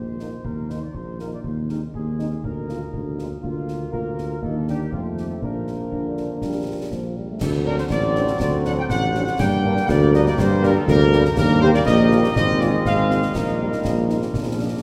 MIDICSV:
0, 0, Header, 1, 7, 480
1, 0, Start_track
1, 0, Tempo, 496278
1, 427, Time_signature, 2, 2, 24, 8
1, 14334, End_track
2, 0, Start_track
2, 0, Title_t, "Trumpet section"
2, 0, Program_c, 0, 61
2, 0, Note_on_c, 0, 72, 64
2, 433, Note_off_c, 0, 72, 0
2, 436, Note_on_c, 0, 70, 50
2, 670, Note_on_c, 0, 72, 58
2, 672, Note_off_c, 0, 70, 0
2, 789, Note_off_c, 0, 72, 0
2, 798, Note_on_c, 0, 74, 54
2, 913, Note_off_c, 0, 74, 0
2, 913, Note_on_c, 0, 72, 57
2, 1152, Note_off_c, 0, 72, 0
2, 1161, Note_on_c, 0, 70, 40
2, 1267, Note_off_c, 0, 70, 0
2, 1285, Note_on_c, 0, 74, 51
2, 1335, Note_off_c, 0, 74, 0
2, 1397, Note_on_c, 0, 72, 47
2, 1504, Note_off_c, 0, 72, 0
2, 1638, Note_on_c, 0, 70, 51
2, 1745, Note_off_c, 0, 70, 0
2, 1880, Note_on_c, 0, 68, 56
2, 2324, Note_off_c, 0, 68, 0
2, 2360, Note_on_c, 0, 70, 60
2, 3041, Note_off_c, 0, 70, 0
2, 3313, Note_on_c, 0, 65, 66
2, 3763, Note_off_c, 0, 65, 0
2, 3796, Note_on_c, 0, 70, 73
2, 4245, Note_off_c, 0, 70, 0
2, 4279, Note_on_c, 0, 69, 74
2, 4520, Note_off_c, 0, 69, 0
2, 4530, Note_on_c, 0, 67, 71
2, 4750, Note_off_c, 0, 67, 0
2, 4765, Note_on_c, 0, 65, 61
2, 4872, Note_off_c, 0, 65, 0
2, 5009, Note_on_c, 0, 67, 49
2, 5118, Note_off_c, 0, 67, 0
2, 5122, Note_on_c, 0, 69, 45
2, 5177, Note_off_c, 0, 69, 0
2, 5241, Note_on_c, 0, 70, 66
2, 6885, Note_off_c, 0, 70, 0
2, 7162, Note_on_c, 0, 69, 85
2, 7271, Note_off_c, 0, 69, 0
2, 7403, Note_on_c, 0, 70, 100
2, 7515, Note_off_c, 0, 70, 0
2, 7527, Note_on_c, 0, 72, 88
2, 7580, Note_off_c, 0, 72, 0
2, 7642, Note_on_c, 0, 74, 108
2, 8089, Note_off_c, 0, 74, 0
2, 8134, Note_on_c, 0, 74, 102
2, 8239, Note_off_c, 0, 74, 0
2, 8366, Note_on_c, 0, 78, 105
2, 8419, Note_off_c, 0, 78, 0
2, 8493, Note_on_c, 0, 79, 109
2, 8545, Note_off_c, 0, 79, 0
2, 8605, Note_on_c, 0, 78, 113
2, 9050, Note_off_c, 0, 78, 0
2, 9086, Note_on_c, 0, 79, 115
2, 9530, Note_off_c, 0, 79, 0
2, 9562, Note_on_c, 0, 74, 127
2, 9801, Note_off_c, 0, 74, 0
2, 9808, Note_on_c, 0, 75, 98
2, 9916, Note_off_c, 0, 75, 0
2, 9927, Note_on_c, 0, 74, 103
2, 10035, Note_off_c, 0, 74, 0
2, 10044, Note_on_c, 0, 72, 118
2, 10281, Note_off_c, 0, 72, 0
2, 10282, Note_on_c, 0, 70, 121
2, 10400, Note_off_c, 0, 70, 0
2, 10412, Note_on_c, 0, 69, 105
2, 10525, Note_off_c, 0, 69, 0
2, 10530, Note_on_c, 0, 70, 127
2, 10970, Note_off_c, 0, 70, 0
2, 10999, Note_on_c, 0, 70, 126
2, 11220, Note_off_c, 0, 70, 0
2, 11235, Note_on_c, 0, 72, 126
2, 11289, Note_off_c, 0, 72, 0
2, 11357, Note_on_c, 0, 74, 119
2, 11411, Note_off_c, 0, 74, 0
2, 11470, Note_on_c, 0, 75, 119
2, 11917, Note_off_c, 0, 75, 0
2, 11951, Note_on_c, 0, 75, 127
2, 12175, Note_off_c, 0, 75, 0
2, 12188, Note_on_c, 0, 74, 100
2, 12310, Note_off_c, 0, 74, 0
2, 12320, Note_on_c, 0, 75, 97
2, 12372, Note_off_c, 0, 75, 0
2, 12432, Note_on_c, 0, 77, 115
2, 12877, Note_off_c, 0, 77, 0
2, 12915, Note_on_c, 0, 70, 90
2, 14309, Note_off_c, 0, 70, 0
2, 14334, End_track
3, 0, Start_track
3, 0, Title_t, "French horn section"
3, 0, Program_c, 1, 60
3, 186, Note_on_c, 1, 51, 32
3, 187, Note_on_c, 1, 63, 33
3, 189, Note_on_c, 1, 58, 36
3, 272, Note_off_c, 1, 51, 0
3, 273, Note_off_c, 1, 63, 0
3, 275, Note_off_c, 1, 58, 0
3, 666, Note_on_c, 1, 58, 35
3, 667, Note_on_c, 1, 51, 35
3, 667, Note_on_c, 1, 63, 34
3, 753, Note_off_c, 1, 58, 0
3, 754, Note_off_c, 1, 51, 0
3, 754, Note_off_c, 1, 63, 0
3, 1150, Note_on_c, 1, 51, 32
3, 1151, Note_on_c, 1, 58, 33
3, 1152, Note_on_c, 1, 63, 33
3, 1237, Note_off_c, 1, 51, 0
3, 1237, Note_off_c, 1, 58, 0
3, 1238, Note_off_c, 1, 63, 0
3, 1635, Note_on_c, 1, 56, 38
3, 1635, Note_on_c, 1, 63, 37
3, 1636, Note_on_c, 1, 60, 41
3, 1721, Note_off_c, 1, 56, 0
3, 1721, Note_off_c, 1, 60, 0
3, 1721, Note_off_c, 1, 63, 0
3, 2111, Note_on_c, 1, 56, 38
3, 2111, Note_on_c, 1, 63, 41
3, 2112, Note_on_c, 1, 60, 39
3, 2198, Note_off_c, 1, 56, 0
3, 2198, Note_off_c, 1, 63, 0
3, 2199, Note_off_c, 1, 60, 0
3, 2590, Note_on_c, 1, 58, 42
3, 2591, Note_on_c, 1, 56, 36
3, 2591, Note_on_c, 1, 65, 41
3, 2678, Note_off_c, 1, 58, 0
3, 2679, Note_off_c, 1, 56, 0
3, 2679, Note_off_c, 1, 65, 0
3, 3071, Note_on_c, 1, 65, 41
3, 3072, Note_on_c, 1, 56, 44
3, 3073, Note_on_c, 1, 58, 40
3, 3159, Note_off_c, 1, 56, 0
3, 3159, Note_off_c, 1, 65, 0
3, 3160, Note_off_c, 1, 58, 0
3, 3316, Note_on_c, 1, 65, 49
3, 3317, Note_on_c, 1, 58, 44
3, 3318, Note_off_c, 1, 58, 0
3, 3318, Note_on_c, 1, 58, 50
3, 3765, Note_off_c, 1, 58, 0
3, 3765, Note_off_c, 1, 65, 0
3, 3799, Note_on_c, 1, 58, 52
3, 3799, Note_on_c, 1, 65, 53
3, 4246, Note_off_c, 1, 65, 0
3, 4247, Note_off_c, 1, 58, 0
3, 4276, Note_on_c, 1, 63, 48
3, 4277, Note_on_c, 1, 58, 52
3, 4385, Note_off_c, 1, 63, 0
3, 4517, Note_on_c, 1, 62, 46
3, 4627, Note_off_c, 1, 62, 0
3, 4726, Note_off_c, 1, 58, 0
3, 4758, Note_on_c, 1, 60, 42
3, 4759, Note_on_c, 1, 57, 49
3, 4760, Note_on_c, 1, 53, 51
3, 5207, Note_off_c, 1, 60, 0
3, 5232, Note_off_c, 1, 53, 0
3, 5242, Note_off_c, 1, 57, 0
3, 5244, Note_on_c, 1, 53, 50
3, 5244, Note_on_c, 1, 58, 47
3, 5244, Note_on_c, 1, 62, 51
3, 6887, Note_off_c, 1, 53, 0
3, 6926, Note_off_c, 1, 58, 0
3, 6926, Note_off_c, 1, 62, 0
3, 7402, Note_on_c, 1, 60, 65
3, 7402, Note_on_c, 1, 62, 68
3, 7404, Note_on_c, 1, 54, 64
3, 7489, Note_off_c, 1, 60, 0
3, 7489, Note_off_c, 1, 62, 0
3, 7490, Note_off_c, 1, 54, 0
3, 7885, Note_on_c, 1, 54, 73
3, 7885, Note_on_c, 1, 62, 65
3, 7887, Note_on_c, 1, 60, 65
3, 7971, Note_off_c, 1, 54, 0
3, 7971, Note_off_c, 1, 62, 0
3, 7972, Note_off_c, 1, 60, 0
3, 8364, Note_on_c, 1, 54, 75
3, 8364, Note_on_c, 1, 60, 67
3, 8364, Note_on_c, 1, 62, 69
3, 8450, Note_off_c, 1, 54, 0
3, 8450, Note_off_c, 1, 60, 0
3, 8450, Note_off_c, 1, 62, 0
3, 8850, Note_on_c, 1, 54, 70
3, 8850, Note_on_c, 1, 60, 68
3, 8851, Note_on_c, 1, 62, 64
3, 8935, Note_off_c, 1, 54, 0
3, 8935, Note_off_c, 1, 60, 0
3, 8935, Note_off_c, 1, 62, 0
3, 9324, Note_on_c, 1, 55, 85
3, 9324, Note_on_c, 1, 62, 87
3, 9325, Note_on_c, 1, 58, 71
3, 9409, Note_off_c, 1, 62, 0
3, 9410, Note_off_c, 1, 55, 0
3, 9410, Note_off_c, 1, 58, 0
3, 9802, Note_on_c, 1, 55, 72
3, 9802, Note_on_c, 1, 58, 86
3, 9803, Note_on_c, 1, 62, 86
3, 9888, Note_off_c, 1, 55, 0
3, 9888, Note_off_c, 1, 58, 0
3, 9889, Note_off_c, 1, 62, 0
3, 10279, Note_on_c, 1, 55, 90
3, 10279, Note_on_c, 1, 58, 93
3, 10280, Note_on_c, 1, 62, 85
3, 10365, Note_off_c, 1, 55, 0
3, 10365, Note_off_c, 1, 58, 0
3, 10366, Note_off_c, 1, 62, 0
3, 10761, Note_on_c, 1, 62, 73
3, 10762, Note_on_c, 1, 58, 92
3, 10763, Note_on_c, 1, 55, 84
3, 10847, Note_off_c, 1, 58, 0
3, 10847, Note_off_c, 1, 62, 0
3, 10848, Note_off_c, 1, 55, 0
3, 11242, Note_on_c, 1, 55, 84
3, 11243, Note_on_c, 1, 58, 89
3, 11243, Note_on_c, 1, 67, 88
3, 11326, Note_off_c, 1, 55, 0
3, 11327, Note_off_c, 1, 58, 0
3, 11327, Note_off_c, 1, 67, 0
3, 11720, Note_on_c, 1, 55, 81
3, 11720, Note_on_c, 1, 67, 78
3, 11721, Note_on_c, 1, 58, 81
3, 11804, Note_off_c, 1, 67, 0
3, 11805, Note_off_c, 1, 55, 0
3, 11806, Note_off_c, 1, 58, 0
3, 12193, Note_on_c, 1, 65, 70
3, 12194, Note_on_c, 1, 60, 70
3, 12195, Note_on_c, 1, 56, 79
3, 12279, Note_off_c, 1, 65, 0
3, 12280, Note_off_c, 1, 56, 0
3, 12280, Note_off_c, 1, 60, 0
3, 12671, Note_on_c, 1, 56, 55
3, 12671, Note_on_c, 1, 60, 63
3, 12672, Note_on_c, 1, 65, 63
3, 12757, Note_off_c, 1, 56, 0
3, 12757, Note_off_c, 1, 60, 0
3, 12758, Note_off_c, 1, 65, 0
3, 13147, Note_on_c, 1, 55, 60
3, 13148, Note_on_c, 1, 63, 59
3, 13150, Note_on_c, 1, 58, 60
3, 13234, Note_off_c, 1, 55, 0
3, 13234, Note_off_c, 1, 63, 0
3, 13236, Note_off_c, 1, 58, 0
3, 13626, Note_on_c, 1, 55, 53
3, 13626, Note_on_c, 1, 58, 52
3, 13627, Note_on_c, 1, 63, 54
3, 13713, Note_off_c, 1, 55, 0
3, 13713, Note_off_c, 1, 58, 0
3, 13713, Note_off_c, 1, 63, 0
3, 14106, Note_on_c, 1, 53, 56
3, 14106, Note_on_c, 1, 58, 52
3, 14107, Note_on_c, 1, 62, 62
3, 14192, Note_off_c, 1, 53, 0
3, 14192, Note_off_c, 1, 58, 0
3, 14193, Note_off_c, 1, 62, 0
3, 14334, End_track
4, 0, Start_track
4, 0, Title_t, "Trombone section"
4, 0, Program_c, 2, 61
4, 7169, Note_on_c, 2, 60, 88
4, 7173, Note_on_c, 2, 54, 81
4, 9046, Note_off_c, 2, 60, 0
4, 9047, Note_off_c, 2, 54, 0
4, 9087, Note_on_c, 2, 58, 91
4, 9088, Note_on_c, 2, 55, 94
4, 10960, Note_off_c, 2, 58, 0
4, 10961, Note_off_c, 2, 55, 0
4, 10992, Note_on_c, 2, 58, 105
4, 10994, Note_on_c, 2, 55, 90
4, 11913, Note_off_c, 2, 58, 0
4, 11914, Note_off_c, 2, 55, 0
4, 11949, Note_on_c, 2, 56, 97
4, 11950, Note_on_c, 2, 60, 93
4, 12900, Note_on_c, 2, 55, 66
4, 12900, Note_on_c, 2, 63, 71
4, 12908, Note_off_c, 2, 56, 0
4, 12909, Note_off_c, 2, 60, 0
4, 13823, Note_off_c, 2, 55, 0
4, 13823, Note_off_c, 2, 63, 0
4, 13864, Note_on_c, 2, 62, 57
4, 13865, Note_on_c, 2, 53, 61
4, 14334, Note_off_c, 2, 53, 0
4, 14334, Note_off_c, 2, 62, 0
4, 14334, End_track
5, 0, Start_track
5, 0, Title_t, "Euphonium"
5, 0, Program_c, 3, 58
5, 5729, Note_on_c, 3, 50, 42
5, 6174, Note_off_c, 3, 50, 0
5, 6205, Note_on_c, 3, 55, 46
5, 6691, Note_on_c, 3, 53, 39
5, 6706, Note_off_c, 3, 55, 0
5, 6932, Note_on_c, 3, 55, 39
5, 6946, Note_off_c, 3, 53, 0
5, 7048, Note_off_c, 3, 55, 0
5, 7056, Note_on_c, 3, 57, 35
5, 7162, Note_off_c, 3, 57, 0
5, 14334, End_track
6, 0, Start_track
6, 0, Title_t, "Tuba"
6, 0, Program_c, 4, 58
6, 0, Note_on_c, 4, 34, 42
6, 347, Note_off_c, 4, 34, 0
6, 428, Note_on_c, 4, 39, 42
6, 829, Note_off_c, 4, 39, 0
6, 911, Note_on_c, 4, 34, 45
6, 1311, Note_off_c, 4, 34, 0
6, 1390, Note_on_c, 4, 39, 45
6, 1791, Note_off_c, 4, 39, 0
6, 1875, Note_on_c, 4, 39, 44
6, 2275, Note_off_c, 4, 39, 0
6, 2352, Note_on_c, 4, 38, 45
6, 2754, Note_off_c, 4, 38, 0
6, 2837, Note_on_c, 4, 38, 51
6, 3237, Note_off_c, 4, 38, 0
6, 3316, Note_on_c, 4, 38, 46
6, 3742, Note_off_c, 4, 38, 0
6, 3795, Note_on_c, 4, 38, 55
6, 4221, Note_off_c, 4, 38, 0
6, 4278, Note_on_c, 4, 39, 57
6, 4704, Note_off_c, 4, 39, 0
6, 4758, Note_on_c, 4, 41, 50
6, 5184, Note_off_c, 4, 41, 0
6, 5240, Note_on_c, 4, 34, 44
6, 5666, Note_off_c, 4, 34, 0
6, 5722, Note_on_c, 4, 34, 45
6, 6076, Note_off_c, 4, 34, 0
6, 6204, Note_on_c, 4, 34, 43
6, 6628, Note_off_c, 4, 34, 0
6, 6686, Note_on_c, 4, 34, 48
6, 7109, Note_off_c, 4, 34, 0
6, 7163, Note_on_c, 4, 38, 79
6, 7564, Note_off_c, 4, 38, 0
6, 7644, Note_on_c, 4, 33, 85
6, 8044, Note_off_c, 4, 33, 0
6, 8127, Note_on_c, 4, 38, 82
6, 8525, Note_off_c, 4, 38, 0
6, 8602, Note_on_c, 4, 33, 87
6, 9002, Note_off_c, 4, 33, 0
6, 9082, Note_on_c, 4, 43, 87
6, 9481, Note_off_c, 4, 43, 0
6, 9559, Note_on_c, 4, 38, 110
6, 9958, Note_off_c, 4, 38, 0
6, 10040, Note_on_c, 4, 43, 100
6, 10438, Note_off_c, 4, 43, 0
6, 10516, Note_on_c, 4, 38, 109
6, 10916, Note_off_c, 4, 38, 0
6, 10995, Note_on_c, 4, 39, 103
6, 11395, Note_off_c, 4, 39, 0
6, 11476, Note_on_c, 4, 34, 106
6, 11874, Note_off_c, 4, 34, 0
6, 11955, Note_on_c, 4, 32, 91
6, 12353, Note_off_c, 4, 32, 0
6, 12426, Note_on_c, 4, 32, 89
6, 12828, Note_off_c, 4, 32, 0
6, 12905, Note_on_c, 4, 34, 71
6, 13269, Note_off_c, 4, 34, 0
6, 13389, Note_on_c, 4, 34, 79
6, 13787, Note_off_c, 4, 34, 0
6, 13866, Note_on_c, 4, 34, 64
6, 14265, Note_off_c, 4, 34, 0
6, 14334, End_track
7, 0, Start_track
7, 0, Title_t, "Drums"
7, 188, Note_on_c, 9, 38, 28
7, 285, Note_off_c, 9, 38, 0
7, 431, Note_on_c, 9, 35, 57
7, 527, Note_off_c, 9, 35, 0
7, 675, Note_on_c, 9, 38, 27
7, 772, Note_off_c, 9, 38, 0
7, 912, Note_on_c, 9, 35, 51
7, 1009, Note_off_c, 9, 35, 0
7, 1153, Note_on_c, 9, 38, 27
7, 1250, Note_off_c, 9, 38, 0
7, 1394, Note_on_c, 9, 35, 51
7, 1491, Note_off_c, 9, 35, 0
7, 1635, Note_on_c, 9, 38, 26
7, 1732, Note_off_c, 9, 38, 0
7, 1876, Note_on_c, 9, 35, 51
7, 1973, Note_off_c, 9, 35, 0
7, 2120, Note_on_c, 9, 38, 25
7, 2217, Note_off_c, 9, 38, 0
7, 2358, Note_on_c, 9, 35, 61
7, 2455, Note_off_c, 9, 35, 0
7, 2602, Note_on_c, 9, 38, 29
7, 2698, Note_off_c, 9, 38, 0
7, 2838, Note_on_c, 9, 35, 54
7, 2934, Note_off_c, 9, 35, 0
7, 3082, Note_on_c, 9, 38, 31
7, 3178, Note_off_c, 9, 38, 0
7, 3321, Note_on_c, 9, 35, 56
7, 3418, Note_off_c, 9, 35, 0
7, 3559, Note_on_c, 9, 38, 28
7, 3656, Note_off_c, 9, 38, 0
7, 3802, Note_on_c, 9, 35, 53
7, 3899, Note_off_c, 9, 35, 0
7, 4043, Note_on_c, 9, 38, 31
7, 4140, Note_off_c, 9, 38, 0
7, 4282, Note_on_c, 9, 35, 56
7, 4379, Note_off_c, 9, 35, 0
7, 4523, Note_on_c, 9, 38, 29
7, 4620, Note_off_c, 9, 38, 0
7, 4761, Note_on_c, 9, 35, 54
7, 4858, Note_off_c, 9, 35, 0
7, 5005, Note_on_c, 9, 38, 26
7, 5102, Note_off_c, 9, 38, 0
7, 5246, Note_on_c, 9, 35, 57
7, 5342, Note_off_c, 9, 35, 0
7, 5484, Note_on_c, 9, 38, 24
7, 5581, Note_off_c, 9, 38, 0
7, 5727, Note_on_c, 9, 35, 52
7, 5824, Note_off_c, 9, 35, 0
7, 5969, Note_on_c, 9, 38, 25
7, 6065, Note_off_c, 9, 38, 0
7, 6206, Note_on_c, 9, 35, 58
7, 6206, Note_on_c, 9, 38, 46
7, 6303, Note_off_c, 9, 35, 0
7, 6303, Note_off_c, 9, 38, 0
7, 6687, Note_on_c, 9, 35, 48
7, 6687, Note_on_c, 9, 38, 36
7, 6784, Note_off_c, 9, 35, 0
7, 6784, Note_off_c, 9, 38, 0
7, 7168, Note_on_c, 9, 35, 81
7, 7168, Note_on_c, 9, 38, 77
7, 7168, Note_on_c, 9, 49, 55
7, 7265, Note_off_c, 9, 35, 0
7, 7265, Note_off_c, 9, 38, 0
7, 7265, Note_off_c, 9, 49, 0
7, 7526, Note_on_c, 9, 38, 53
7, 7623, Note_off_c, 9, 38, 0
7, 7644, Note_on_c, 9, 35, 75
7, 7644, Note_on_c, 9, 38, 77
7, 7741, Note_off_c, 9, 35, 0
7, 7741, Note_off_c, 9, 38, 0
7, 7885, Note_on_c, 9, 38, 51
7, 7982, Note_off_c, 9, 38, 0
7, 8004, Note_on_c, 9, 38, 54
7, 8100, Note_off_c, 9, 38, 0
7, 8122, Note_on_c, 9, 35, 91
7, 8122, Note_on_c, 9, 38, 84
7, 8219, Note_off_c, 9, 35, 0
7, 8219, Note_off_c, 9, 38, 0
7, 8364, Note_on_c, 9, 38, 55
7, 8461, Note_off_c, 9, 38, 0
7, 8605, Note_on_c, 9, 35, 80
7, 8605, Note_on_c, 9, 38, 82
7, 8701, Note_off_c, 9, 35, 0
7, 8701, Note_off_c, 9, 38, 0
7, 8845, Note_on_c, 9, 38, 51
7, 8942, Note_off_c, 9, 38, 0
7, 8965, Note_on_c, 9, 38, 50
7, 9062, Note_off_c, 9, 38, 0
7, 9084, Note_on_c, 9, 35, 91
7, 9084, Note_on_c, 9, 38, 85
7, 9084, Note_on_c, 9, 49, 36
7, 9181, Note_off_c, 9, 35, 0
7, 9181, Note_off_c, 9, 38, 0
7, 9181, Note_off_c, 9, 49, 0
7, 9446, Note_on_c, 9, 38, 51
7, 9543, Note_off_c, 9, 38, 0
7, 9566, Note_on_c, 9, 35, 78
7, 9566, Note_on_c, 9, 38, 84
7, 9663, Note_off_c, 9, 35, 0
7, 9663, Note_off_c, 9, 38, 0
7, 9806, Note_on_c, 9, 38, 55
7, 9903, Note_off_c, 9, 38, 0
7, 9926, Note_on_c, 9, 38, 55
7, 10023, Note_off_c, 9, 38, 0
7, 10045, Note_on_c, 9, 35, 91
7, 10045, Note_on_c, 9, 38, 87
7, 10141, Note_off_c, 9, 35, 0
7, 10141, Note_off_c, 9, 38, 0
7, 10284, Note_on_c, 9, 38, 52
7, 10380, Note_off_c, 9, 38, 0
7, 10522, Note_on_c, 9, 35, 90
7, 10522, Note_on_c, 9, 38, 80
7, 10619, Note_off_c, 9, 35, 0
7, 10619, Note_off_c, 9, 38, 0
7, 10762, Note_on_c, 9, 38, 52
7, 10858, Note_off_c, 9, 38, 0
7, 10881, Note_on_c, 9, 38, 60
7, 10978, Note_off_c, 9, 38, 0
7, 11000, Note_on_c, 9, 35, 93
7, 11000, Note_on_c, 9, 38, 87
7, 11000, Note_on_c, 9, 49, 34
7, 11097, Note_off_c, 9, 35, 0
7, 11097, Note_off_c, 9, 38, 0
7, 11097, Note_off_c, 9, 49, 0
7, 11356, Note_on_c, 9, 38, 59
7, 11453, Note_off_c, 9, 38, 0
7, 11476, Note_on_c, 9, 35, 82
7, 11476, Note_on_c, 9, 38, 83
7, 11572, Note_off_c, 9, 35, 0
7, 11572, Note_off_c, 9, 38, 0
7, 11717, Note_on_c, 9, 38, 53
7, 11813, Note_off_c, 9, 38, 0
7, 11836, Note_on_c, 9, 38, 59
7, 11933, Note_off_c, 9, 38, 0
7, 11955, Note_on_c, 9, 35, 85
7, 11955, Note_on_c, 9, 38, 83
7, 12052, Note_off_c, 9, 35, 0
7, 12052, Note_off_c, 9, 38, 0
7, 12196, Note_on_c, 9, 38, 52
7, 12292, Note_off_c, 9, 38, 0
7, 12432, Note_on_c, 9, 35, 79
7, 12432, Note_on_c, 9, 38, 69
7, 12529, Note_off_c, 9, 35, 0
7, 12529, Note_off_c, 9, 38, 0
7, 12674, Note_on_c, 9, 38, 54
7, 12771, Note_off_c, 9, 38, 0
7, 12788, Note_on_c, 9, 38, 53
7, 12885, Note_off_c, 9, 38, 0
7, 12912, Note_on_c, 9, 35, 81
7, 12912, Note_on_c, 9, 38, 80
7, 12912, Note_on_c, 9, 49, 32
7, 13008, Note_off_c, 9, 35, 0
7, 13008, Note_off_c, 9, 38, 0
7, 13008, Note_off_c, 9, 49, 0
7, 13272, Note_on_c, 9, 38, 54
7, 13369, Note_off_c, 9, 38, 0
7, 13393, Note_on_c, 9, 35, 69
7, 13393, Note_on_c, 9, 38, 76
7, 13489, Note_off_c, 9, 35, 0
7, 13489, Note_off_c, 9, 38, 0
7, 13632, Note_on_c, 9, 38, 53
7, 13729, Note_off_c, 9, 38, 0
7, 13753, Note_on_c, 9, 38, 56
7, 13849, Note_off_c, 9, 38, 0
7, 13869, Note_on_c, 9, 35, 83
7, 13869, Note_on_c, 9, 38, 65
7, 13966, Note_off_c, 9, 35, 0
7, 13966, Note_off_c, 9, 38, 0
7, 14334, End_track
0, 0, End_of_file